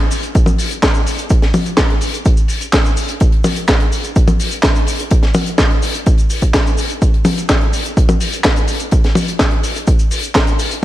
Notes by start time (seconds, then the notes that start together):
0.11 open hi-hat, cabasa
0.23 closed hi-hat, cabasa
0.35 kick, closed hi-hat, cabasa
0.46 closed hi-hat, high tom, cabasa
0.58 open hi-hat, cabasa
0.71 closed hi-hat, cabasa
0.82 kick, snare, clap, closed hi-hat, cabasa
0.94 closed hi-hat, cabasa
1.06 open hi-hat, cabasa
1.18 closed hi-hat, cabasa
1.30 kick, closed hi-hat, cabasa
1.42 snare, closed hi-hat
1.54 open hi-hat, high tom, cabasa
1.66 closed hi-hat, cabasa
1.77 kick, snare, clap, closed hi-hat, cabasa
1.90 closed hi-hat
2.01 open hi-hat, cabasa
2.14 closed hi-hat, cabasa
2.25 kick, closed hi-hat, cabasa
2.37 closed hi-hat, cabasa
2.48 open hi-hat, cabasa
2.61 closed hi-hat, cabasa
2.73 kick, snare, clap, closed hi-hat, cabasa
2.84 closed hi-hat, cabasa
2.97 open hi-hat, cabasa
3.08 closed hi-hat, cabasa
3.20 kick, closed hi-hat, cabasa
3.32 closed hi-hat
3.44 open hi-hat, high tom, cabasa
3.56 closed hi-hat, cabasa
3.67 kick, snare, clap, closed hi-hat, cabasa
3.80 closed hi-hat
3.92 open hi-hat, cabasa
4.04 closed hi-hat, cabasa
4.16 kick, closed hi-hat, cabasa
4.28 closed hi-hat, high tom, cabasa
4.40 open hi-hat, cabasa
4.51 closed hi-hat, cabasa
4.63 kick, snare, clap, closed hi-hat, cabasa
4.75 closed hi-hat, cabasa
4.87 open hi-hat, cabasa
4.99 closed hi-hat, cabasa
5.11 kick, closed hi-hat, cabasa
5.23 snare, closed hi-hat
5.34 open hi-hat, high tom, cabasa
5.46 closed hi-hat, cabasa
5.58 kick, snare, clap, closed hi-hat, cabasa
5.71 closed hi-hat
5.82 open hi-hat, cabasa
5.94 closed hi-hat, cabasa
6.06 kick, closed hi-hat, cabasa
6.18 closed hi-hat, cabasa
6.30 open hi-hat, cabasa
6.42 kick, closed hi-hat, cabasa
6.54 kick, snare, clap, closed hi-hat, cabasa
6.67 closed hi-hat, cabasa
6.78 open hi-hat, cabasa
6.90 closed hi-hat, cabasa
7.02 kick, closed hi-hat, cabasa
7.14 closed hi-hat
7.25 open hi-hat, high tom, cabasa
7.38 closed hi-hat, cabasa
7.49 kick, snare, clap, closed hi-hat, cabasa
7.61 closed hi-hat
7.73 open hi-hat, cabasa
7.85 closed hi-hat, cabasa
7.97 kick, closed hi-hat, cabasa
8.09 closed hi-hat, high tom, cabasa
8.21 open hi-hat, cabasa
8.33 closed hi-hat, cabasa
8.44 kick, snare, clap, closed hi-hat, cabasa
8.56 closed hi-hat, cabasa
8.68 open hi-hat, cabasa
8.80 closed hi-hat, cabasa
8.91 kick, closed hi-hat, cabasa
9.04 snare, closed hi-hat
9.15 open hi-hat, high tom, cabasa
9.28 closed hi-hat, cabasa
9.39 kick, snare, clap, closed hi-hat, cabasa
9.51 closed hi-hat
9.63 open hi-hat, cabasa
9.76 closed hi-hat, cabasa
9.87 kick, closed hi-hat, cabasa
9.99 closed hi-hat, cabasa
10.11 open hi-hat, cabasa
10.23 closed hi-hat, cabasa
10.35 kick, snare, clap, closed hi-hat, cabasa
10.47 closed hi-hat, cabasa
10.59 open hi-hat, cabasa
10.71 closed hi-hat, cabasa